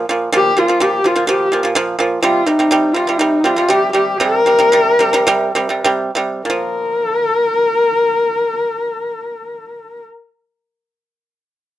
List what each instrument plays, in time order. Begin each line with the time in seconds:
0.09 pipa A#2 F3
0.32 pipa A#2 F3, horsehead fiddle G4
0.57 pipa A#2 F3, horsehead fiddle F4
0.68 pipa A#2 F3
0.80 pipa A#2 F3, horsehead fiddle G4
1.04 pipa A#2 F3, horsehead fiddle F4
1.16 pipa A#2 F3
1.27 pipa A#2 F3, horsehead fiddle G4
1.52 pipa A#2 F3
1.63 pipa A#2 F3
1.75 pipa A#2 F3
1.99 pipa A#2 F3
2.22 pipa C3 G3, horsehead fiddle F4
2.46 pipa C3 G3, horsehead fiddle D#4
2.59 pipa C3 G3
2.71 pipa C3 G3
2.94 pipa C3 G3, horsehead fiddle F4
3.07 pipa C3 G3
3.18 pipa C3 G3, horsehead fiddle D#4
3.44 pipa C3 G3, horsehead fiddle F4
3.56 pipa C3 G3
3.69 pipa C3 G3, horsehead fiddle G4
3.93 pipa C3 G3, horsehead fiddle G4
4.18 pipa C3 G3, horsehead fiddle A#4
4.46 pipa C3 G3
4.59 pipa C3 G3
4.72 pipa C3 G3
4.99 pipa C3 G3
5.13 pipa C3 G3
5.27 pipa C3 G3
5.55 pipa C3 G3
5.69 pipa C3 G3
5.84 pipa C3 G3
6.15 pipa C3 G3
6.45 pipa A#2, horsehead fiddle A#4
6.50 pipa F3